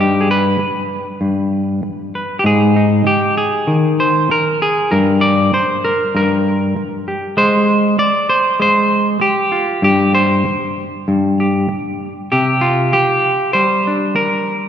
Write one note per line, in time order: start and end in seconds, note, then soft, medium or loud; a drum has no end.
0.00 0.58 G2 medium
0.00 0.30 G4 medium
0.21 0.28 G#4 medium
0.31 2.14 B4 medium
0.59 muted clean electric guitar stroke medium
1.21 1.82 G2 medium
1.83 muted clean electric guitar stroke medium
2.15 2.39 B4 soft
2.39 2.46 G4 medium
2.44 3.03 G#2 medium
2.44 3.06 G#4 medium
2.76 4.89 D#4 soft
3.04 3.37 G4 medium
3.04 muted clean electric guitar stroke medium
3.38 4.00 G#4 medium
3.67 4.28 D#3 medium
4.00 4.31 C5 medium
4.29 4.62 A#4 medium
4.29 muted clean electric guitar stroke medium
4.62 4.93 G#4 medium
4.92 5.52 G2 medium
4.92 5.83 A#4 medium
5.21 5.53 D5 medium
5.53 6.46 C5 medium
5.53 muted clean electric guitar stroke medium
5.85 6.15 A#4 medium
6.15 6.75 G2 medium
6.15 7.07 A#4 medium
6.76 muted clean electric guitar stroke medium
7.08 7.34 G4 soft
7.37 7.98 G#3 medium
7.37 7.99 C5 loud
7.99 8.29 D5 medium
7.99 muted clean electric guitar stroke medium
8.29 8.60 C5 medium
8.60 9.19 G#3 medium
8.60 9.21 C5 loud
9.20 9.83 G4 medium
9.20 muted clean electric guitar stroke medium
9.52 9.79 F4 soft
9.82 10.44 G2 medium
9.82 10.14 G4 medium
10.15 11.07 C5 medium
10.45 muted clean electric guitar stroke medium
11.08 11.68 G2 medium
11.40 12.29 G4 soft
11.69 muted clean electric guitar stroke medium
12.32 12.94 C3 medium
12.32 12.92 G4 medium
12.61 13.55 F4 medium
12.93 13.53 G4 medium
12.93 muted clean electric guitar stroke medium
13.53 14.69 G3 medium
13.53 14.15 C5 medium
13.87 14.69 D4 soft
14.15 14.69 A#4 medium
14.15 muted clean electric guitar stroke medium